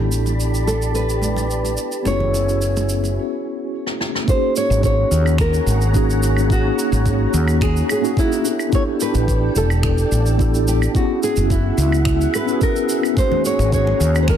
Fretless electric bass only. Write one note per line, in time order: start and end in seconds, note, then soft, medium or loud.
0.00 1.76 A1 medium
2.06 3.17 F#1 medium
4.70 5.03 G#1 medium
5.11 5.58 D#2 loud
5.66 6.69 G#1 loud
6.92 7.25 G#1 medium
7.34 7.81 D#2 loud
9.15 9.47 A1 medium
9.56 10.03 E1 loud
10.12 10.86 A1 loud
11.37 11.70 F#1 medium
11.78 12.25 C#2 loud
13.59 13.92 G#1 loud
14.00 14.37 D#2 loud